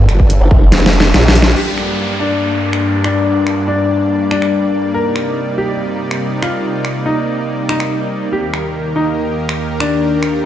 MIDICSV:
0, 0, Header, 1, 7, 480
1, 0, Start_track
1, 0, Key_signature, -2, "minor"
1, 0, Tempo, 422535
1, 1778, Time_signature, 4, 2, 24, 8
1, 11875, End_track
2, 0, Start_track
2, 0, Title_t, "Grand piano"
2, 0, Program_c, 0, 0
2, 1777, Note_on_c, 0, 67, 84
2, 2405, Note_off_c, 0, 67, 0
2, 2498, Note_on_c, 0, 62, 81
2, 3365, Note_off_c, 0, 62, 0
2, 3458, Note_on_c, 0, 62, 84
2, 4086, Note_off_c, 0, 62, 0
2, 4178, Note_on_c, 0, 62, 85
2, 4805, Note_off_c, 0, 62, 0
2, 4898, Note_on_c, 0, 62, 85
2, 5525, Note_off_c, 0, 62, 0
2, 5617, Note_on_c, 0, 70, 88
2, 6245, Note_off_c, 0, 70, 0
2, 6338, Note_on_c, 0, 67, 84
2, 7205, Note_off_c, 0, 67, 0
2, 7299, Note_on_c, 0, 65, 82
2, 7926, Note_off_c, 0, 65, 0
2, 8017, Note_on_c, 0, 63, 85
2, 8645, Note_off_c, 0, 63, 0
2, 8738, Note_on_c, 0, 63, 83
2, 9365, Note_off_c, 0, 63, 0
2, 9458, Note_on_c, 0, 67, 87
2, 10085, Note_off_c, 0, 67, 0
2, 10177, Note_on_c, 0, 63, 83
2, 11045, Note_off_c, 0, 63, 0
2, 11137, Note_on_c, 0, 62, 86
2, 11765, Note_off_c, 0, 62, 0
2, 11875, End_track
3, 0, Start_track
3, 0, Title_t, "Supersaw synth"
3, 0, Program_c, 1, 81
3, 0, Note_on_c, 1, 58, 81
3, 0, Note_on_c, 1, 62, 72
3, 0, Note_on_c, 1, 69, 88
3, 1732, Note_off_c, 1, 58, 0
3, 1733, Note_off_c, 1, 62, 0
3, 1764, Note_off_c, 1, 69, 0
3, 1778, Note_on_c, 1, 43, 75
3, 1778, Note_on_c, 1, 55, 67
3, 1778, Note_on_c, 1, 58, 67
3, 1778, Note_on_c, 1, 62, 67
3, 1778, Note_on_c, 1, 74, 82
3, 5579, Note_off_c, 1, 43, 0
3, 5580, Note_off_c, 1, 62, 0
3, 5619, Note_on_c, 1, 48, 76
3, 5619, Note_on_c, 1, 63, 70
3, 9412, Note_off_c, 1, 55, 0
3, 9413, Note_off_c, 1, 74, 0
3, 9420, Note_off_c, 1, 48, 0
3, 9420, Note_off_c, 1, 63, 0
3, 9458, Note_on_c, 1, 39, 73
3, 9458, Note_on_c, 1, 51, 68
3, 9458, Note_on_c, 1, 67, 70
3, 9458, Note_on_c, 1, 70, 85
3, 11875, Note_off_c, 1, 39, 0
3, 11875, Note_off_c, 1, 51, 0
3, 11875, Note_off_c, 1, 58, 0
3, 11875, Note_off_c, 1, 67, 0
3, 11875, Note_off_c, 1, 70, 0
3, 11875, End_track
4, 0, Start_track
4, 0, Title_t, "Wobble bass"
4, 0, Program_c, 2, 39
4, 462, Note_on_c, 2, 31, 97
4, 559, Note_off_c, 2, 31, 0
4, 578, Note_on_c, 2, 29, 100
4, 1280, Note_off_c, 2, 29, 0
4, 1297, Note_on_c, 2, 34, 102
4, 1759, Note_off_c, 2, 34, 0
4, 11875, End_track
5, 0, Start_track
5, 0, Title_t, "Wobble bass"
5, 0, Program_c, 3, 39
5, 99, Note_on_c, 3, 31, 100
5, 443, Note_off_c, 3, 31, 0
5, 11875, End_track
6, 0, Start_track
6, 0, Title_t, "Downlifter"
6, 0, Program_c, 4, 103
6, 1778, Note_on_c, 4, 60, 66
6, 5618, Note_off_c, 4, 60, 0
6, 11875, End_track
7, 0, Start_track
7, 0, Title_t, "Drums"
7, 98, Note_on_c, 9, 26, 52
7, 98, Note_on_c, 9, 42, 56
7, 212, Note_off_c, 9, 26, 0
7, 212, Note_off_c, 9, 42, 0
7, 223, Note_on_c, 9, 36, 58
7, 336, Note_off_c, 9, 36, 0
7, 339, Note_on_c, 9, 42, 85
7, 453, Note_off_c, 9, 42, 0
7, 578, Note_on_c, 9, 36, 105
7, 692, Note_off_c, 9, 36, 0
7, 818, Note_on_c, 9, 38, 71
7, 818, Note_on_c, 9, 42, 85
7, 932, Note_off_c, 9, 38, 0
7, 932, Note_off_c, 9, 42, 0
7, 978, Note_on_c, 9, 38, 74
7, 1059, Note_on_c, 9, 42, 58
7, 1092, Note_off_c, 9, 38, 0
7, 1138, Note_on_c, 9, 38, 85
7, 1172, Note_off_c, 9, 42, 0
7, 1252, Note_off_c, 9, 38, 0
7, 1298, Note_on_c, 9, 38, 92
7, 1298, Note_on_c, 9, 42, 84
7, 1412, Note_off_c, 9, 38, 0
7, 1412, Note_off_c, 9, 42, 0
7, 1458, Note_on_c, 9, 38, 97
7, 1538, Note_on_c, 9, 46, 98
7, 1572, Note_off_c, 9, 38, 0
7, 1618, Note_on_c, 9, 38, 105
7, 1652, Note_off_c, 9, 46, 0
7, 1732, Note_off_c, 9, 38, 0
7, 1778, Note_on_c, 9, 49, 78
7, 1892, Note_off_c, 9, 49, 0
7, 2018, Note_on_c, 9, 26, 46
7, 2132, Note_off_c, 9, 26, 0
7, 3103, Note_on_c, 9, 26, 52
7, 3216, Note_off_c, 9, 26, 0
7, 3458, Note_on_c, 9, 26, 68
7, 3572, Note_off_c, 9, 26, 0
7, 3938, Note_on_c, 9, 26, 45
7, 4051, Note_off_c, 9, 26, 0
7, 4898, Note_on_c, 9, 26, 68
7, 5011, Note_off_c, 9, 26, 0
7, 5023, Note_on_c, 9, 26, 53
7, 5136, Note_off_c, 9, 26, 0
7, 5858, Note_on_c, 9, 26, 47
7, 5972, Note_off_c, 9, 26, 0
7, 6943, Note_on_c, 9, 26, 53
7, 7056, Note_off_c, 9, 26, 0
7, 7299, Note_on_c, 9, 26, 70
7, 7413, Note_off_c, 9, 26, 0
7, 7778, Note_on_c, 9, 26, 48
7, 7892, Note_off_c, 9, 26, 0
7, 8738, Note_on_c, 9, 26, 73
7, 8852, Note_off_c, 9, 26, 0
7, 8863, Note_on_c, 9, 26, 56
7, 8977, Note_off_c, 9, 26, 0
7, 9697, Note_on_c, 9, 26, 49
7, 9810, Note_off_c, 9, 26, 0
7, 10781, Note_on_c, 9, 26, 59
7, 10895, Note_off_c, 9, 26, 0
7, 11137, Note_on_c, 9, 26, 75
7, 11251, Note_off_c, 9, 26, 0
7, 11617, Note_on_c, 9, 26, 50
7, 11731, Note_off_c, 9, 26, 0
7, 11875, End_track
0, 0, End_of_file